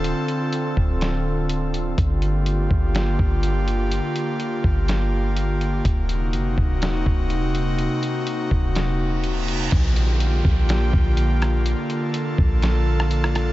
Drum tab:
CC |----------------|----------------|----------------|----------------|
HH |x-x-x---x---x-x-|x-x-x---x---x-x-|x-x-x---x---x-x-|x-x-x---x---x-x-|
SD |--------o-------|--------o-------|--------o-------|--------o-------|
BD |------o---------|o-----o---o-----|------o---------|o-----o---o-----|

CC |----------------|x---------------|----------------|
HH |x-x-x---x---x-x-|x-x-x---x---x-x-|x-x-x---x---x-x-|
SD |--------o-------|--------o-----r-|--------o--r-rr-|
BD |------o---------|o-----o---o-----|------o---------|